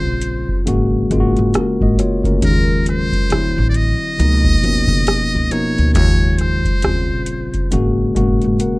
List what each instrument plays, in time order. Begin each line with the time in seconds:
Already playing: tine electric piano C#3 G3 C4 F4, muted trumpet C5
0.06 upright bass A#1
0.21 closed hi-hat
0.49 kick
0.66 upright bass G#1, tine electric piano C#3 G#3 A#3 F#4, closed hi-hat
1.10 upright bass G#1, tine electric piano C#3 G#3 A#3 F4, kick, closed hi-hat
1.20 tine electric piano F#4
1.37 upright bass G#2, closed hi-hat
1.54 tine electric piano C#4 A#4, muted upright bass stroke, cross-stick, closed hi-hat
1.81 upright bass G#1, tine electric piano F#4 D#5, kick
1.99 tine electric piano F4 C#5, cross-stick, closed hi-hat
2.24 upright bass D2, tine electric piano C#4 A#4, kick, closed hi-hat
2.42 upright bass D#2, tine electric piano C#3 F#3 G#3 D#4, muted trumpet A#4, kick, closed hi-hat
2.51 tine electric piano F4
2.86 muted trumpet C5, cross-stick, closed hi-hat
3.12 kick, closed hi-hat
3.30 upright bass D2, tine electric piano D3 F#3 C4 E4, cross-stick, closed hi-hat
3.58 upright bass A1
3.69 muted trumpet D5
3.74 muted trumpet D#5, closed hi-hat
4.18 upright bass C#2, tine electric piano B2 F3 A#3 D#4, closed hi-hat
4.44 kick
4.62 upright bass C#2, tine electric piano B2 F3 A#3 C#4, closed hi-hat
4.87 upright bass C#3, kick, closed hi-hat
5.07 muted upright bass stroke, cross-stick, closed hi-hat
5.35 upright bass C#2
5.50 tine electric piano B2 F3 A#3 D#4, muted trumpet C#5, cross-stick, closed hi-hat
5.78 upright bass D2, closed hi-hat
5.94 upright bass D#2, tine electric piano C#3 F#3 G#3 F4, muted trumpet C#5, kick, closed hi-hat
6.38 muted trumpet C5, cross-stick, closed hi-hat
6.65 kick, closed hi-hat
6.82 upright bass D#2, tine electric piano C#3 F#3 C4 F4, cross-stick, closed hi-hat
6.90 tine electric piano G3
7.13 upright bass A#1
7.26 closed hi-hat
7.54 kick, closed hi-hat
7.71 upright bass G#1, tine electric piano C#3 G#3 A#3 F#4, closed hi-hat
8.15 upright bass G#1, tine electric piano B2 G#3 A#3 F#4, kick, closed hi-hat
8.21 tine electric piano C#3
8.42 upright bass G#2, closed hi-hat
8.60 tine electric piano A#4 F#5, muted upright bass stroke, closed hi-hat